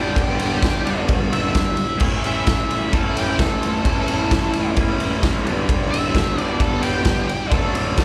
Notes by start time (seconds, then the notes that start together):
Already playing: G2 D3 G3 B3 D4 G4
0.16 kick, ride
0.39 ride
0.63 kick, snare, ride
0.83 D3 G3 B3 D4, ride
0.89 G2
1.08 kick, ride
1.33 E5, ride
1.55 kick, snare, ride
1.77 ride
1.98 A2 E3 A3, kick, crash
2.02 C#4 E4
2.24 E5, ride
2.46 kick, snare, ride
2.70 ride
2.93 A2 E3 A3 A4, kick, ride
2.97 C#4 E4
3.17 G4, ride
3.39 A4, kick, snare, ride
3.63 ride
3.83 A2 E3 A3 C#4, kick, ride
3.88 E4
4.08 ride
4.31 kick, snare, ride
4.53 ride
4.74 A2 E3, kick, ride
4.78 A3 C#4 E4
5.00 ride
5.23 kick, snare, ride
5.42 G2 D3 G3 B3
5.47 D4, ride
5.69 kick, ride
5.91 E5, ride
6.15 kick, snare, ride
6.35 G3 B3 D4, ride
6.40 G2 D3 D5
6.60 A4, kick, ride
6.82 G4, ride
7.05 G4, kick, snare, ride
7.29 ride
7.50 D3 F#3 A4, kick, ride
7.55 A3 D4
7.75 ride
7.97 kick, snare, ride